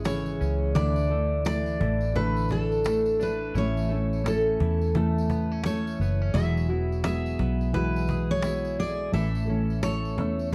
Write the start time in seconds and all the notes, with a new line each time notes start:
Already playing: G#1 G#3 C#4
0.05 C#3 E3 C#4 E4 G#4 C#5, cajon slap, tambourine
0.26 tambourine
0.41 C#2 C#4, cajon slap, tambourine
0.62 cajon slap
0.75 D2 D3 E3 A3 D4 E4 A4 D5, cajon bass, tambourine
0.96 tambourine
1.10 A3 E4 A4
1.45 E3 A3 D4 E4 A4 D5, cajon slap, tambourine
1.66 tambourine
1.80 A1 E3 A3 E4 A4, cajon bass
2.01 cajon slap, tambourine
2.14 D3 E3 A3 E4 A4 B4, cajon bass
2.37 tambourine
2.49 D4 A4, cajon bass, tambourine
2.72 cajon slap, tambourine
2.84 E3 A3 E4 A4, cajon slap, tambourine
3.06 tambourine
3.19 A3 D4 E4 A4 B4, tambourine
3.43 cajon slap
3.55 A1 A2 E3 A3 C#4 E4 A4 C#5, tambourine
3.77 tambourine
3.90 A3 C#4 E4 A4, cajon slap
4.13 tambourine
4.23 A3 C#4 E4 A4, cajon slap, tambourine
4.28 A4
4.60 E2 E3, cajon bass
4.81 cajon slap, tambourine
4.95 A2 E3 A3 C#4 E4 A4, cajon bass
5.18 tambourine
5.30 B3, cajon bass, tambourine
5.51 C#4, cajon slap
5.63 A3 C#4 E4 A4 C#5, cajon slap, tambourine
5.87 tambourine
5.99 F#1 B3, cajon slap, tambourine
6.21 C#4, cajon slap
6.33 E1 E3 F#3 G#3 B3 E4 F#4 G#4 E5, cajon bass, tambourine
6.57 tambourine
6.69 B3 E4 F#4, cajon slap
6.92 tambourine
7.04 G#3 B3 E4 F#4 G#4 E5, cajon slap, tambourine
7.26 tambourine
7.39 B1 B3, cajon bass
7.61 cajon slap, tambourine
7.73 E3 G#3 B3 E4 F#4 B4, cajon bass
7.96 tambourine
8.08 G#4, cajon bass, tambourine
8.31 C#5, tambourine
8.42 G#3 B3 E4 F#4, cajon slap, tambourine
8.65 tambourine
8.80 G#4 D5, tambourine
9.00 cajon slap
9.11 A1 A2 E3 A3 C#4 E4 A4 E5, tambourine
9.35 tambourine
9.47 A3 C#4 E4 A4, cajon slap
9.70 cajon slap, tambourine
9.83 A3 C#4 E4 A4 C#5, cajon slap, tambourine
10.05 tambourine
10.17 E2 A3 C#4 E4 A4, cajon bass
10.39 cajon slap, tambourine